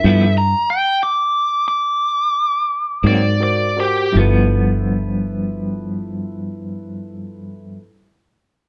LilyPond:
<<
  \new Staff \with { instrumentName = "Lead electric guitar" } { \time 12/8 \key g \mixolydian \tempo 4. = 52 e''8 bes''8 g''8 d'''4 d'''2 d''8 d''8 g'8 | r1. | }
  \new Staff \with { instrumentName = "Grand piano" } { \time 12/8 \key g \mixolydian <e' f' a' b'>8 r1 <ges' bes' c''>8 <ges' bes' c''>8 <ges' bes' c''>8 | <e' f' a' b'>1. | }
  \new Staff \with { instrumentName = "Clean electric guitar" } { \clef bass \time 12/8 \key g \mixolydian <g, f b e'>8 r1 <aes, ges bes c'>8 r4 | <g, f b>1. | }
  \new Staff \with { instrumentName = "Fingered electric bass" } { \clef bass \time 12/8 \key g \mixolydian g,4 r2. r8 aes,4. | g,,1. | }
>>